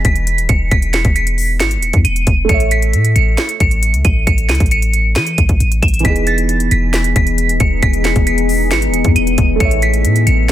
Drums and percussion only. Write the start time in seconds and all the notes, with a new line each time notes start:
0.05 kick, closed hi-hat
0.16 closed hi-hat
0.27 closed hi-hat
0.38 closed hi-hat
0.49 kick, closed hi-hat
0.71 kick, closed hi-hat
0.82 closed hi-hat
0.93 snare, clap, closed hi-hat
1.05 kick, closed hi-hat
1.16 closed hi-hat
1.27 closed hi-hat
1.38 open hi-hat
1.60 snare, clap, closed hi-hat
1.71 closed hi-hat
1.82 closed hi-hat
1.93 kick, closed hi-hat
2.05 closed hi-hat
2.16 closed hi-hat
2.27 kick, closed hi-hat
2.49 kick, closed hi-hat
2.60 closed hi-hat
2.71 closed hi-hat
2.82 closed hi-hat
2.94 closed hi-hat
3.05 closed hi-hat
3.16 closed hi-hat
3.38 snare, clap, closed hi-hat
3.49 closed hi-hat
3.60 kick, closed hi-hat
3.71 closed hi-hat
3.83 closed hi-hat
3.94 closed hi-hat
4.05 kick, closed hi-hat
4.27 kick, closed hi-hat
4.38 closed hi-hat
4.49 snare, clap, closed hi-hat
4.55 closed hi-hat
4.60 kick, closed hi-hat
4.66 closed hi-hat
4.71 closed hi-hat
4.82 closed hi-hat
4.94 closed hi-hat
5.16 snare, clap, closed hi-hat
5.27 closed hi-hat
5.38 kick, closed hi-hat
5.49 kick, closed hi-hat
5.60 closed hi-hat
5.72 closed hi-hat
5.83 kick, closed hi-hat
5.88 closed hi-hat
5.94 closed hi-hat
5.99 closed hi-hat
6.05 kick, closed hi-hat
6.16 closed hi-hat
6.27 closed hi-hat
6.38 closed hi-hat
6.49 closed hi-hat
6.60 closed hi-hat
6.71 closed hi-hat
6.94 snare, clap, closed hi-hat
7.04 closed hi-hat
7.16 kick, closed hi-hat
7.27 closed hi-hat
7.38 closed hi-hat
7.49 closed hi-hat
7.60 kick, closed hi-hat
7.83 kick, closed hi-hat
7.93 closed hi-hat
8.04 snare, clap, closed hi-hat
8.16 kick, closed hi-hat
8.27 closed hi-hat
8.38 closed hi-hat
8.49 open hi-hat
8.71 snare, clap, closed hi-hat
8.82 closed hi-hat
8.94 closed hi-hat
9.04 kick, closed hi-hat
9.16 closed hi-hat
9.27 closed hi-hat
9.38 kick, closed hi-hat
9.60 kick, closed hi-hat
9.71 closed hi-hat
9.82 closed hi-hat
9.94 closed hi-hat
10.05 closed hi-hat
10.16 closed hi-hat
10.27 closed hi-hat